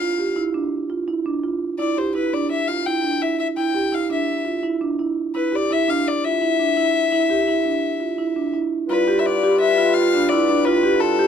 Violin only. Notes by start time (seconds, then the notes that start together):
Already playing: F5
1.79 D5
1.98 C5
2.15 B4
2.33 D5
2.51 E5
2.68 F5
2.86 G5
3.22 E5
3.39 E5
3.57 G5
3.94 F5
4.12 E5
5.35 B4
5.55 D5
5.72 E5
5.89 F5
6.07 D5
6.25 E5
8.90 B4
9.19 E5
9.26 D5
9.60 E5
9.94 F5
10.29 D5
10.65 B4
11.00 A4